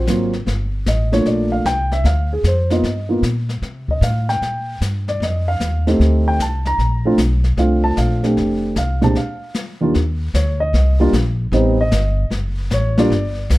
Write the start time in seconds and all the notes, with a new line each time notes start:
0.07 G#1 F#3 A#3 C4 F4, snare, hi-hat pedal
0.33 snare
0.46 G1, brush sweep, snare
0.86 A1 D#5, snare, hi-hat pedal
1.12 A3 A#3 D4 F4 C#5, snare
1.26 A#1 D5, brush sweep, snare
1.52 F5
1.65 C2 G5, snare, hi-hat pedal
1.92 E5, snare
2.04 D2 F5, brush sweep, snare
2.33 G#4
2.43 F2, snare, hi-hat pedal
2.47 C5
2.70 A#3 B3 D#4 F4 D#5, snare
2.83 G2, brush sweep, snare
3.09 A#3 B3 D#4 F4
3.22 A#2, snare, hi-hat pedal
3.49 snare
3.62 C3, brush sweep, snare
3.88 D#5, kick
4.01 A2 F5, snare, hi-hat pedal
4.29 G5, snare
4.41 A#2, brush sweep, snare
4.81 G2, snare, hi-hat pedal
5.08 D5, snare
5.20 F2 D#5, brush sweep, snare
5.48 F5
5.60 D#2, snare, hi-hat pedal
5.87 A3 C4 D#4 G4, snare
5.99 D2, brush sweep, snare
6.28 G5
6.39 C2 A5, snare, hi-hat pedal
6.65 A#5, snare
6.78 A#1, brush sweep, snare
7.05 A3 C4 D4 F4
7.18 B1, snare, hi-hat pedal
7.44 snare
7.57 C2 A3 C4 D4 F4 F5, brush sweep, snare
7.84 A5
7.97 A#1 F5, snare, hi-hat pedal
8.23 A3 C4 D4 G4, snare
8.37 F1, brush sweep, snare
8.76 C2 F5, snare, hi-hat pedal
9.02 A#2 G#3 C4 D4 G4 A5, snare
9.15 F5, brush sweep, snare
9.54 snare, hi-hat pedal
9.81 D#2 G3 A#3 D4 F4
9.94 D#2, brush sweep, snare
10.34 D2 C#5, snare, hi-hat pedal
10.60 D#5
10.73 C2, brush sweep, snare
11.00 G3 A#3 D4 F4
11.13 A#1, snare, hi-hat pedal
11.52 A1 G3 B3 C4 D#4 C5, brush sweep, snare
11.81 D#5
11.91 G1, snare, hi-hat pedal
12.31 F#1, brush sweep, snare
12.71 A1 C#5, snare, hi-hat pedal
12.97 G3 A#3 D4 F4 D5, snare
13.10 G1, brush sweep, snare
13.50 C2, snare, hi-hat pedal